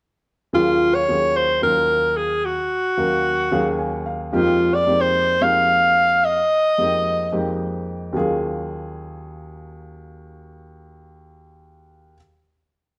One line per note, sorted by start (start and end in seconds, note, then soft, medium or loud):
0.53 1.01 D#2 medium
0.53 1.01 F#3 medium
0.53 1.01 A#3 medium
0.53 1.01 C#4 medium
0.53 1.01 F4 medium
0.53 0.96 F4 medium
0.53 1.01 G#4 medium
0.94 1.38 C#5 medium
1.08 1.56 D#2 medium
1.08 1.55 F#3 medium
1.08 1.56 A#3 medium
1.08 1.56 C#4 medium
1.08 1.56 F4 medium
1.08 1.56 G#4 medium
1.36 1.62 C5 medium
1.62 2.57 D#2 medium
1.62 2.57 F#3 medium
1.62 2.57 A#3 medium
1.62 2.57 C#4 medium
1.62 2.57 F4 medium
1.62 2.57 A#4 medium
1.62 2.18 A#4 medium
2.17 2.47 G#4 medium
2.45 4.07 F#4 medium
2.97 3.45 D#2 medium
2.97 3.45 F#3 medium
2.97 3.45 A#3 medium
2.97 3.45 C#4 medium
2.97 3.45 A#4 medium
2.97 3.45 F5 medium
3.51 4.33 D#2 medium
3.51 4.33 F#3 medium
3.51 4.31 A#3 medium
3.51 4.34 C#4 medium
3.51 4.34 G#4 medium
3.51 4.05 F5 medium
3.79 4.04 G#5 medium
4.06 4.32 F5 medium
4.33 4.80 F2 medium
4.33 4.80 G#3 medium
4.33 4.80 A#3 medium
4.33 4.81 C4 medium
4.33 4.81 D#4 medium
4.33 4.76 F4 medium
4.33 4.81 G4 medium
4.74 5.02 D5 medium
4.87 5.34 F2 medium
4.87 5.35 G#3 medium
4.87 5.35 A#3 medium
4.87 5.35 C4 medium
4.87 5.35 D#4 medium
4.87 5.35 G4 medium
5.01 5.44 C5 loud
5.41 6.36 F2 medium
5.41 6.36 G#3 medium
5.41 6.36 A#3 medium
5.41 6.36 C4 medium
5.41 6.36 D#4 medium
5.41 6.36 G4 medium
5.41 6.26 F5 loud
6.25 7.60 D#5 loud
6.78 7.25 F2 medium
6.78 7.25 G#3 medium
6.78 7.25 A#3 medium
6.78 7.25 C4 medium
6.78 7.26 D#4 medium
6.78 7.26 G4 medium
7.32 8.14 F2 medium
7.32 8.14 G#3 medium
7.32 8.12 A#3 medium
7.32 8.14 C4 medium
7.32 8.14 D#4 medium
7.32 8.14 G4 medium
8.13 12.13 D#2 medium
8.13 12.14 F#3 medium
8.13 12.15 A#3 medium
8.13 12.16 C#4 medium
8.13 12.17 F4 medium
8.17 12.17 G#4 medium